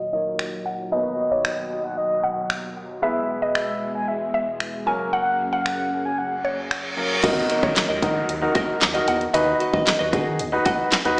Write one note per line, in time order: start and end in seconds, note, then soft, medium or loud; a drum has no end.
0.00 0.90 D#2 medium
0.00 0.90 A#2 medium
0.00 0.10 F#3 medium
0.00 0.90 F#3 medium
0.00 0.10 A#3 medium
0.00 0.10 D#4 medium
0.00 0.11 A#4 medium
0.00 0.26 D#5 medium
0.13 0.90 F#3 soft
0.13 0.92 A#3 soft
0.13 0.91 D#4 soft
0.13 0.92 A#4 medium
0.13 0.34 D#5 medium
0.39 finger snap loud
0.66 0.76 F#5 medium
0.91 2.98 D#2 medium
0.91 3.00 D#2 medium
0.91 3.00 B2 medium
0.91 2.98 F#3 medium
0.91 3.00 F#3 medium
0.91 2.98 B3 medium
0.91 2.99 D#4 medium
0.91 2.99 B4 medium
0.91 1.33 D#5 medium
0.91 1.13 D#5 medium
1.31 1.46 C#5 medium
1.31 1.69 D#5 medium
1.44 1.83 D#5 medium
1.44 finger snap loud
1.84 1.99 F#5 medium
1.97 2.37 D#5 loud
2.23 2.44 F#5 medium
2.50 finger snap loud
3.02 4.85 E2 medium
3.02 4.85 B2 medium
3.02 4.83 G#3 medium
3.02 4.85 G#3 medium
3.02 4.83 B3 medium
3.02 4.83 E4 medium
3.02 4.83 B4 medium
3.02 3.39 E5 medium
3.02 3.24 E5 loud
3.42 3.79 D#5 medium
3.42 3.48 D#5 medium
3.55 3.92 E5 medium
3.55 finger snap loud
3.95 4.09 G#5 loud
4.08 4.47 E5 medium
4.34 4.55 E5 medium
4.60 finger snap loud
4.86 7.21 F#2 medium
4.86 7.21 C#3 medium
4.86 6.93 F#3 medium
4.86 6.93 A#3 medium
4.86 7.21 A#3 medium
4.86 6.93 C#4 medium
4.86 6.94 A#4 medium
4.86 4.97 G#5 medium
5.13 5.34 F#5 loud
5.13 5.50 F#5 loud
5.53 5.65 F5 medium
5.53 5.90 F#5 medium
5.66 6.07 F#5 medium
5.66 finger snap loud
6.05 6.20 G#5 loud
6.18 6.58 F#5 loud
6.18 reverse cymbal medium
6.45 6.82 C#5 medium
6.71 finger snap loud
6.97 7.23 F#3 medium
6.97 7.24 A#3 soft
6.97 7.24 C#4 soft
6.97 7.22 A#4 medium
7.23 7.43 D#2 loud
7.23 7.79 D#4 medium
7.23 7.44 F#4 medium
7.23 7.79 F#4 medium
7.23 7.79 A#4 medium
7.23 7.37 A#4 medium
7.23 7.44 D#5 loud
7.23 7.35 D#5 medium
7.23 kick loud
7.23 closed hi-hat medium
7.23 crash loud
7.23 downlifter medium
7.37 muted clean electric guitar stroke medium
7.50 7.63 F#4 medium
7.50 7.63 A#4 medium
7.50 7.62 D#5 medium
7.50 closed hi-hat medium
7.63 7.73 D#3 loud
7.63 7.75 F#4 medium
7.63 7.76 A#4 medium
7.63 8.00 C#5 medium
7.63 7.76 D#5 medium
7.63 kick loud
7.76 snare loud
7.76 clap loud
7.76 closed hi-hat loud
7.89 7.99 D#2 loud
7.89 8.01 F#4 medium
7.89 8.02 A#4 medium
7.89 8.03 D#5 medium
8.02 8.22 D#3 loud
8.02 8.30 D#4 medium
8.02 8.19 F#4 medium
8.02 8.30 F#4 medium
8.02 8.30 A#4 medium
8.02 8.16 A#4 medium
8.02 8.14 D#5 medium
8.02 kick loud
8.02 closed hi-hat medium
8.15 muted clean electric guitar stroke soft
8.28 8.48 D#2 loud
8.28 muted clean electric guitar stroke soft
8.28 closed hi-hat medium
8.42 8.51 D#4 medium
8.42 8.51 F#4 medium
8.42 8.51 A#4 medium
8.42 muted clean electric guitar stroke medium
8.55 8.83 D#4 medium
8.55 8.76 F#4 loud
8.55 8.83 F#4 medium
8.55 8.83 A#4 medium
8.55 8.68 A#4 medium
8.55 8.76 D#5 medium
8.55 8.67 D#5 loud
8.55 kick loud
8.55 closed hi-hat medium
8.68 muted clean electric guitar stroke medium
8.81 9.01 D#2 loud
8.81 muted clean electric guitar stroke soft
8.81 snare medium
8.81 clap loud
8.81 closed hi-hat medium
8.94 9.22 D#4 medium
8.94 9.22 F#4 medium
8.94 9.06 F#4 medium
8.94 9.07 A#4 medium
8.94 9.23 A#4 medium
8.94 9.08 D#5 medium
8.94 closed hi-hat medium
9.07 9.27 E2 loud
9.07 9.24 F#4 medium
9.07 9.21 A#4 medium
9.07 9.19 D#5 medium
9.07 9.18 F#5 medium
9.07 closed hi-hat medium
9.20 muted clean electric guitar stroke medium
9.20 closed hi-hat medium
9.33 9.54 D#2 loud
9.33 9.89 D#4 medium
9.33 9.55 F#4 medium
9.33 9.90 F#4 medium
9.33 9.90 B4 medium
9.33 9.47 B4 medium
9.33 9.55 D#5 loud
9.33 9.46 D#5 loud
9.33 closed hi-hat medium
9.47 muted clean electric guitar stroke soft
9.60 9.74 F#4 medium
9.60 9.73 B4 medium
9.60 9.72 D#5 medium
9.60 closed hi-hat medium
9.73 9.83 D#3 loud
9.73 9.85 F#4 medium
9.73 9.86 B4 medium
9.73 9.86 D#5 medium
9.73 10.11 D#5 medium
9.73 kick loud
9.86 muted clean electric guitar stroke soft
9.86 snare loud
9.86 clap loud
9.86 closed hi-hat loud
9.99 10.14 D#2 loud
9.99 10.11 F#4 medium
9.99 10.12 B4 medium
9.99 10.13 D#5 medium
10.12 10.41 D#3 loud
10.12 10.41 D#4 medium
10.12 10.29 F#4 medium
10.12 10.41 F#4 medium
10.12 10.41 G#4 medium
10.12 10.26 B4 medium
10.12 10.25 D#5 medium
10.12 kick loud
10.12 closed hi-hat medium
10.26 muted clean electric guitar stroke soft
10.39 10.59 D#2 loud
10.39 muted clean electric guitar stroke soft
10.39 closed hi-hat medium
10.52 10.62 D#4 medium
10.52 10.62 F#4 medium
10.52 10.62 B4 medium
10.52 muted clean electric guitar stroke medium
10.65 10.93 D#4 medium
10.65 10.86 F#4 medium
10.65 10.93 F#4 medium
10.65 10.79 B4 medium
10.65 10.94 B4 medium
10.65 10.77 D#5 loud
10.65 10.87 F#5 medium
10.65 kick loud
10.65 closed hi-hat medium
10.78 muted clean electric guitar stroke soft
10.91 muted clean electric guitar stroke soft
10.91 snare medium
10.91 clap loud
10.91 closed hi-hat medium
11.05 11.15 D#2 medium
11.05 11.20 D#4 medium
11.05 11.20 F#4 medium
11.05 11.20 B4 loud
11.05 muted clean electric guitar stroke soft
11.05 closed hi-hat medium